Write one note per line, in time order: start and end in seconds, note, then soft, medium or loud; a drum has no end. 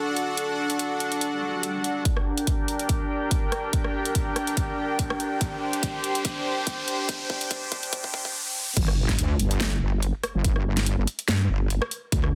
0.00 2.02 D4 medium
0.00 8.35 D4 medium
0.00 2.02 F#4 medium
0.00 2.02 A4 medium
0.00 2.05 A4 medium
0.00 2.02 F#5 medium
0.00 2.05 F#5 medium
0.16 closed hi-hat soft
0.37 closed hi-hat medium
0.70 closed hi-hat medium
0.79 closed hi-hat medium
1.00 closed hi-hat soft
1.12 closed hi-hat soft
1.21 closed hi-hat medium
1.21 swell medium
1.63 closed hi-hat medium
1.84 closed hi-hat soft
2.05 8.31 D4 medium
2.05 5.38 G4 medium
2.05 5.38 A#4 medium
2.05 8.31 G5 medium
2.05 kick medium
2.05 closed hi-hat medium
2.05 riser medium
2.17 cross-stick medium
2.38 closed hi-hat medium
2.47 kick medium
2.47 closed hi-hat medium
2.68 closed hi-hat medium
2.73 5.94 A#4 medium
2.79 closed hi-hat soft
2.89 kick loud
2.89 closed hi-hat medium
3.31 kick loud
3.31 closed hi-hat medium
3.48 8.35 G5 medium
3.52 cross-stick medium
3.52 closed hi-hat medium
3.73 kick medium
3.73 closed hi-hat medium
3.84 cross-stick soft
4.05 closed hi-hat medium
4.15 kick medium
4.15 closed hi-hat medium
4.36 cross-stick medium
4.36 closed hi-hat medium
4.47 closed hi-hat soft
4.57 kick medium
4.57 closed hi-hat medium
4.99 kick loud
4.99 closed hi-hat medium
5.10 cross-stick medium
5.20 closed hi-hat medium
5.41 8.32 G4 medium
5.41 8.32 C5 medium
5.41 kick loud
5.41 closed hi-hat medium
5.62 8.35 C5 medium
5.73 closed hi-hat soft
5.83 kick loud
5.83 closed hi-hat medium
6.04 closed hi-hat medium
6.15 closed hi-hat medium
6.25 kick loud
6.25 closed hi-hat medium
6.67 kick loud
6.67 closed hi-hat medium
6.88 closed hi-hat medium
7.09 kick loud
7.09 closed hi-hat medium
7.30 kick loud
7.41 closed hi-hat medium
7.51 kick loud
7.51 closed hi-hat medium
7.72 kick loud
7.72 closed hi-hat medium
7.83 closed hi-hat soft
7.93 kick loud
7.93 closed hi-hat medium
8.04 kick medium
8.14 kick loud
8.25 kick medium
8.77 9.17 G1 loud
8.77 kick loud
8.77 closed hi-hat medium
8.77 crash loud
8.77 sub drop medium
8.88 cross-stick medium
9.09 kick medium
9.09 snare soft
9.09 closed hi-hat medium
9.19 9.38 D2 medium
9.19 closed hi-hat medium
9.40 9.80 G1 medium
9.40 closed hi-hat medium
9.51 closed hi-hat medium
9.60 snare loud
9.60 closed hi-hat medium
9.81 10.12 G1 loud
10.03 closed hi-hat medium
10.23 cross-stick medium
10.23 closed hi-hat medium
10.35 10.96 G1 loud
10.44 kick loud
10.44 closed hi-hat medium
10.56 cross-stick soft
10.77 snare soft
10.77 closed hi-hat medium
10.86 closed hi-hat medium
10.98 11.06 G1 loud
11.07 closed hi-hat medium
11.19 closed hi-hat medium
11.28 11.48 G2 medium
11.28 snare loud
11.28 closed hi-hat medium
11.49 11.80 G1 loud
11.70 closed hi-hat medium
11.82 cross-stick medium
11.91 closed hi-hat medium
12.12 12.35 D2 loud
12.12 kick loud
12.12 closed hi-hat medium
12.24 cross-stick soft